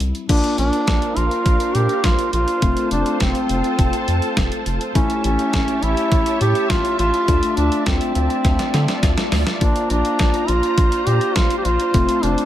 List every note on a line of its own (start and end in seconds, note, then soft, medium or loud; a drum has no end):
0.00 0.13 C2 medium
0.00 0.25 G3 medium
0.00 0.25 C4 medium
0.00 0.25 E4 medium
0.00 closed hi-hat medium
0.15 closed hi-hat medium
0.29 0.42 A#1 loud
0.29 2.58 A#3 medium
0.29 2.60 D4 medium
0.29 2.58 D4 medium
0.29 0.56 D4 loud
0.29 2.58 F4 medium
0.29 2.60 A#4 medium
0.29 4.91 C5 medium
0.29 2.60 F5 medium
0.29 kick loud
0.29 closed hi-hat medium
0.29 crash medium
0.44 closed hi-hat medium
0.58 0.71 A#1 loud
0.58 1.18 D4 loud
0.58 closed hi-hat medium
0.73 closed hi-hat medium
0.87 1.00 A#1 loud
0.87 kick loud
0.87 snare loud
0.87 closed hi-hat medium
1.02 closed hi-hat medium
1.17 1.29 A#1 loud
1.17 1.77 F4 loud
1.17 closed hi-hat medium
1.31 closed hi-hat soft
1.46 1.58 A#1 loud
1.46 kick loud
1.46 closed hi-hat medium
1.60 closed hi-hat medium
1.75 1.88 A#2 loud
1.75 2.06 G4 loud
1.75 closed hi-hat medium
1.89 closed hi-hat soft
2.04 2.17 A#1 medium
2.04 2.33 F4 loud
2.04 kick loud
2.04 snare loud
2.04 closed hi-hat medium
2.19 closed hi-hat medium
2.33 2.46 A#1 medium
2.33 2.87 F4 loud
2.33 closed hi-hat medium
2.48 closed hi-hat medium
2.62 2.75 F1 loud
2.62 4.91 A3 medium
2.62 4.91 C4 medium
2.62 4.93 F4 medium
2.62 4.91 F4 medium
2.62 4.93 A4 medium
2.62 4.93 A5 medium
2.62 kick loud
2.62 closed hi-hat medium
2.77 closed hi-hat medium
2.91 3.04 F1 loud
2.91 3.19 D4 medium
2.91 closed hi-hat medium
3.06 closed hi-hat medium
3.20 3.33 F1 loud
3.20 4.62 C4 medium
3.20 kick loud
3.20 snare loud
3.20 closed hi-hat medium
3.35 closed hi-hat medium
3.49 3.62 F1 loud
3.49 closed hi-hat medium
3.64 closed hi-hat soft
3.79 3.91 F1 loud
3.79 kick loud
3.79 closed hi-hat medium
3.93 closed hi-hat medium
4.08 4.21 F2 loud
4.08 closed hi-hat medium
4.22 closed hi-hat soft
4.37 4.50 F1 medium
4.37 kick loud
4.37 snare loud
4.37 closed hi-hat medium
4.52 closed hi-hat medium
4.66 4.79 F1 medium
4.66 closed hi-hat medium
4.81 closed hi-hat medium
4.95 5.08 A1 loud
4.95 7.24 A3 medium
4.95 7.24 C#4 medium
4.95 5.22 C#4 loud
4.95 7.24 E4 medium
4.95 7.26 G4 medium
4.95 7.26 C#5 medium
4.95 9.57 E5 medium
4.95 9.57 A5 medium
4.95 kick loud
4.95 closed hi-hat medium
5.10 closed hi-hat medium
5.24 5.37 A1 loud
5.24 5.84 C#4 loud
5.24 closed hi-hat medium
5.39 closed hi-hat medium
5.53 5.66 A1 loud
5.53 kick loud
5.53 snare loud
5.53 closed hi-hat medium
5.68 closed hi-hat medium
5.83 5.95 A1 loud
5.83 6.40 E4 loud
5.83 closed hi-hat medium
5.97 closed hi-hat medium
6.12 6.24 A1 loud
6.12 kick loud
6.12 closed hi-hat medium
6.26 closed hi-hat medium
6.41 6.54 A2 loud
6.41 6.71 G4 loud
6.41 closed hi-hat medium
6.55 closed hi-hat soft
6.70 6.83 A1 medium
6.70 6.99 F4 loud
6.70 kick loud
6.70 snare loud
6.70 closed hi-hat medium
6.85 closed hi-hat medium
6.99 7.12 A1 medium
6.99 7.53 F4 loud
6.99 closed hi-hat medium
7.14 closed hi-hat medium
7.28 7.41 D2 loud
7.28 9.57 A3 medium
7.28 9.57 D4 medium
7.28 12.45 F4 medium
7.28 9.57 F4 medium
7.28 11.90 D5 medium
7.28 kick loud
7.28 closed hi-hat medium
7.43 closed hi-hat medium
7.57 7.70 D2 loud
7.57 7.85 D4 medium
7.57 closed hi-hat medium
7.72 closed hi-hat medium
7.86 7.99 D2 loud
7.86 9.28 C4 medium
7.86 kick loud
7.86 snare loud
7.86 closed hi-hat medium
8.01 closed hi-hat medium
8.15 8.28 D2 loud
8.15 closed hi-hat medium
8.30 closed hi-hat soft
8.45 8.57 D2 loud
8.45 kick loud
8.45 snare medium
8.45 closed hi-hat medium
8.59 snare medium
8.59 closed hi-hat medium
8.74 8.87 D3 loud
8.74 snare medium
8.74 closed hi-hat medium
8.88 snare medium
8.88 closed hi-hat soft
9.03 9.16 D2 medium
9.03 kick loud
9.03 snare medium
9.03 closed hi-hat medium
9.18 snare medium
9.18 closed hi-hat medium
9.32 9.45 D2 medium
9.32 snare loud
9.32 open hi-hat medium
9.47 snare medium
9.47 closed hi-hat medium
9.61 9.74 A#1 loud
9.61 11.90 A#3 medium
9.61 9.88 D4 loud
9.61 11.90 D4 medium
9.61 11.90 F4 medium
9.61 12.45 C5 medium
9.61 11.92 A#5 medium
9.61 kick loud
9.61 closed hi-hat medium
9.76 closed hi-hat medium
9.90 10.03 A#1 loud
9.90 10.50 D4 loud
9.90 closed hi-hat medium
10.05 closed hi-hat medium
10.19 10.32 A#1 loud
10.19 kick loud
10.19 snare loud
10.19 closed hi-hat medium
10.34 closed hi-hat medium
10.48 10.61 A#1 loud
10.48 11.08 F4 loud
10.48 closed hi-hat medium
10.63 closed hi-hat soft
10.78 10.90 A#1 loud
10.78 kick loud
10.78 closed hi-hat medium
10.92 closed hi-hat medium
11.07 11.19 A#2 loud
11.07 11.37 G4 loud
11.07 closed hi-hat medium
11.21 closed hi-hat soft
11.36 11.49 A#1 medium
11.36 11.57 F4 loud
11.36 kick loud
11.36 snare loud
11.36 closed hi-hat medium
11.50 closed hi-hat medium
11.58 11.66 G4 medium
11.65 11.78 A#1 medium
11.65 12.25 F4 loud
11.65 closed hi-hat medium
11.80 closed hi-hat medium
11.94 12.07 F1 loud
11.94 12.45 A3 medium
11.94 12.45 C4 medium
11.94 12.45 F4 medium
11.94 12.45 A4 medium
11.94 12.45 A5 medium
11.94 kick loud
11.94 closed hi-hat medium
12.09 closed hi-hat medium
12.23 12.36 F1 loud
12.23 12.45 D4 medium
12.23 closed hi-hat medium
12.38 closed hi-hat medium